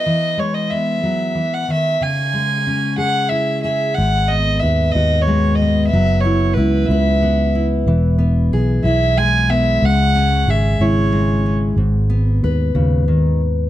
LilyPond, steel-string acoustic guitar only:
\new Staff \with { instrumentName = "Steel-string acoustic guitar" } { \time 6/8 \key gis \minor \tempo 4. = 61 << { r4 b2 | r4 cis'8 gis'8 e'8 gis'8~ | gis'8 b8 b'8 fis'4 b8~ | b8 e'8 e'8 b'4 e'8 |
r8 b8 gis'8 e'4 b8 | r8 cis'8 gis'8 e'4 cis'8 | r8 b8 b'2 | } \\ { <e b>8 gis4 fis8 e8 dis8 | cis8 gis2~ gis8 | gis,2 gis4 | fis2 b4 |
e2 gis4 | cis2 gis4 | gis,4. cis8 dis8 r8 | } >> }